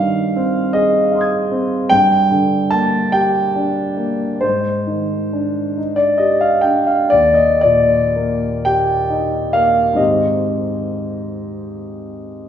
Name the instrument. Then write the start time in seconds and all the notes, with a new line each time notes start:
grand piano
Already playing: G2 F5
0.00 D#3
0.36 C4
0.73 G#4 D#5
1.12 D#4 F5 C6
1.18 D#6 G#6
1.52 C4
1.90 G2 G5
2.31 D3
2.71 A#3 A5
3.12 G4 G5
3.55 D4
3.97 A#3
4.41 G#2 C5
4.87 D#3
5.33 D4
5.77 D#4
5.96 D5
6.18 G4 D#5
6.41 F5
6.61 D4 G5
6.87 F5
7.10 D#2 D5
7.34 D#5
7.61 A#2 D5
8.16 A#3
8.65 G4 G5
9.10 D#4
9.53 A#3 F5
9.93 G#2 D#3 C4 D#4 G4 D#5